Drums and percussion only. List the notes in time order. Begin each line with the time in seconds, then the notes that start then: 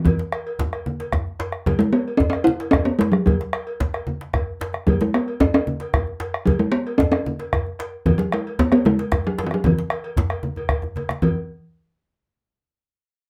0.05 bombo low, cowbell, high conga, low conga, djembe bass
0.19 djembe slap, high conga
0.32 bombo rim, cowbell
0.47 cowbell
0.59 bombo low, djembe slap, djembe tone, low conga
0.73 bombo rim, cowbell
0.86 high conga
1.00 cowbell, djembe slap
1.12 bombo rim, bombo low, low conga, djembe bass
1.27 high conga
1.39 bombo rim, cowbell, djembe slap, djembe tone
1.52 bombo rim
1.66 bombo low, cowbell, high conga, djembe bass, low conga
1.80 djembe slap
1.94 cowbell
2.08 cowbell
2.20 bombo low, djembe tone, djembe bass, low conga
2.33 bombo rim, cowbell
2.47 high conga
2.60 cowbell, djembe slap
2.73 bombo rim, bombo low, cowbell, djembe bass, low conga
2.87 high conga
3.00 bombo rim, cowbell, djembe slap, djembe tone
3.13 bombo rim
3.27 bombo rim, bombo low, cowbell, high conga, djembe bass, low conga
3.40 bombo rim, djembe slap, high conga
3.53 bombo rim, cowbell
3.67 cowbell
3.80 bombo low, djembe slap, djembe tone, low conga
3.94 bombo rim, cowbell, djembe slap
4.07 high conga
4.21 djembe slap
4.33 bombo rim, bombo low, cowbell, high conga, low conga, djembe bass
4.60 cowbell, djembe slap, high conga, djembe tone
4.73 bombo rim, high conga
4.87 bombo low, cowbell, high conga, low conga, djembe bass
5.00 djembe slap, high conga
5.14 bombo rim, cowbell
5.28 cowbell
5.40 bombo low, djembe slap, djembe tone, djembe bass, low conga
5.54 bombo rim, cowbell
5.67 high conga
5.80 cowbell, djembe slap
5.94 bombo rim, bombo low, cowbell, djembe bass, low conga
6.07 high conga
6.20 bombo rim, cowbell, djembe slap, djembe tone
6.34 bombo rim
6.46 bombo low, cowbell, high conga, djembe bass, low conga
6.60 high conga
6.87 cowbell
6.99 bombo low, djembe slap, djembe tone, low conga, djembe bass
7.13 bombo rim, cowbell
7.26 high conga
7.39 cowbell, djembe slap
7.53 bombo rim, bombo low, cowbell, djembe bass
7.66 high conga
7.79 bombo rim, cowbell, djembe slap
8.06 bombo low, cowbell, high conga, low conga, djembe bass
8.19 djembe slap, high conga
8.32 bombo rim, cowbell
8.47 cowbell
8.59 bombo low, djembe slap, djembe tone, low conga
8.72 bombo rim, cowbell
8.85 high conga
8.99 cowbell, djembe slap
9.12 bombo rim, bombo low, cowbell, low conga, djembe bass
9.25 high conga
9.38 bombo rim, cowbell, djembe slap, djembe tone
9.51 bombo rim
9.64 bombo rim, bombo low, cowbell, high conga, low conga, djembe bass
9.79 djembe slap
9.90 bombo rim, cowbell, djembe slap
10.04 cowbell
10.16 bombo low, djembe slap, high conga, djembe tone, low conga, djembe bass
10.30 bombo rim, cowbell
10.43 high conga
10.56 cowbell, low conga, djembe bass
10.69 bombo rim, bombo low, cowbell, low conga, djembe bass
10.82 bombo rim, low conga, djembe bass
10.96 cowbell, djembe slap, high conga
11.09 bombo rim, djembe slap, high conga
11.22 bombo low, cowbell, low conga, djembe bass